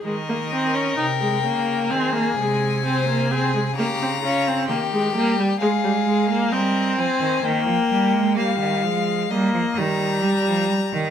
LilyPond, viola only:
\new Staff \with { instrumentName = "Viola" } { \time 4/4 \key aes \major \tempo 4 = 65 aes16 bes16 c'16 des'16 ees'16 aes16 bes8 c'16 bes16 aes8 c'16 bes16 c'16 aes16 | bes16 c'16 des'16 c'16 bes16 aes16 bes16 g16 aes16 g16 aes16 bes16 c'4 | bes4 g8 aes8 bes8 g4. | }